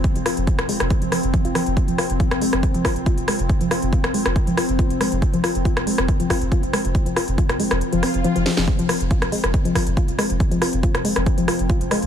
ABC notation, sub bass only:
X:1
M:4/4
L:1/16
Q:1/4=139
K:Fm
V:1 name="Sub bass" clef=bass
z F,,, z F,,, z F,,, z F,,, z F,,, z F,,, z F,,, z F,,, | z F,,, z F,,, z F,,, z F,,, z F,,, z F,,, z F,,, z F,,, | z F,,, z F,,, z F,,, z F,,, z F,,, z F,,, z F,,, z F,,, | z F,,, z F,,, z F,,, z F,,, z F,,, z F,,, z F,,, z F,,, |
z F,,, z F,,, z F,,, z F,,, z F,,, z F,,, z F,,, z F,,, | z F,,, z F,,, z F,,, z F,,, z F,,, z F,,, z F,,, z F,,, | z F,,, z F,,, z F,,, z F,,, z F,,, z F,,, z F,,, z F,,, |]